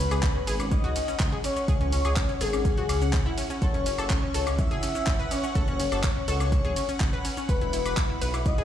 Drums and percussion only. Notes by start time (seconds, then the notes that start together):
0.11 closed hi-hat, cabasa, high woodblock
0.23 kick, clap, closed hi-hat, cabasa
0.47 open hi-hat, ride, cabasa
0.60 closed hi-hat, cabasa, high woodblock
0.71 kick, closed hi-hat, cabasa
0.84 closed hi-hat
0.96 open hi-hat, ride, cabasa
1.08 closed hi-hat, cabasa
1.20 kick, clap, closed hi-hat, cabasa
1.44 open hi-hat, ride, cabasa
1.56 closed hi-hat, cabasa
1.68 kick, closed hi-hat, cabasa
1.81 closed hi-hat
1.92 open hi-hat, ride, cabasa
2.05 closed hi-hat, cabasa, high woodblock
2.16 kick, clap, closed hi-hat, cabasa
2.29 closed hi-hat
2.41 open hi-hat, ride, cabasa
2.53 closed hi-hat, cabasa, high woodblock
2.65 kick, closed hi-hat, cabasa
2.77 closed hi-hat
2.89 open hi-hat, ride, cabasa, high woodblock
3.02 closed hi-hat, cabasa
3.13 kick, clap, closed hi-hat, cabasa
3.38 open hi-hat, ride, cabasa
3.50 closed hi-hat, cabasa
3.62 kick, closed hi-hat, cabasa
3.74 closed hi-hat
3.86 open hi-hat, ride, cabasa
3.98 closed hi-hat, cabasa, high woodblock
4.10 kick, clap, closed hi-hat, cabasa
4.34 open hi-hat, ride, cabasa
4.47 closed hi-hat, cabasa, high woodblock
4.59 kick, closed hi-hat, cabasa
4.71 closed hi-hat
4.83 open hi-hat, ride, cabasa
4.95 closed hi-hat, cabasa
5.07 kick, clap, closed hi-hat, cabasa
5.31 open hi-hat, ride, cabasa
5.44 closed hi-hat, cabasa
5.55 kick, closed hi-hat, cabasa
5.68 closed hi-hat
5.80 open hi-hat, ride, cabasa
5.92 closed hi-hat, cabasa, high woodblock
6.03 kick, clap, closed hi-hat, cabasa
6.28 open hi-hat, ride, cabasa
6.40 closed hi-hat, cabasa, high woodblock
6.52 kick, closed hi-hat, cabasa
6.65 closed hi-hat
6.76 open hi-hat, ride, cabasa
6.89 closed hi-hat, cabasa
7.00 kick, clap, closed hi-hat, cabasa
7.25 open hi-hat, ride, cabasa
7.37 closed hi-hat, cabasa
7.49 kick, closed hi-hat, cabasa
7.61 closed hi-hat
7.73 open hi-hat, ride, cabasa
7.86 closed hi-hat, cabasa, high woodblock
7.97 kick, clap, closed hi-hat, cabasa
8.22 open hi-hat, ride, cabasa
8.34 closed hi-hat, cabasa, high woodblock
8.46 kick, closed hi-hat, cabasa
8.58 closed hi-hat